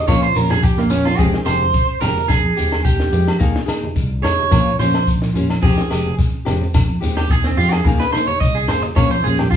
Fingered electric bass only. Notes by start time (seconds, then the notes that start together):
0.08 A#1
0.35 A#1
1.19 F1
1.46 F1
2.02 F1
2.29 F1
2.44 F2
2.56 D#2
2.85 D#2
3.12 F2
3.41 D#2
3.68 D#3
3.96 C2
4.52 A#1
4.80 A#1
5.63 F1
5.92 F1
6.47 F1
6.74 F1
6.89 F2
7.02 D#2
7.30 D#2
7.57 F2
7.85 D#2
8.14 D#3
8.41 C2
8.97 A#1
9.24 A#1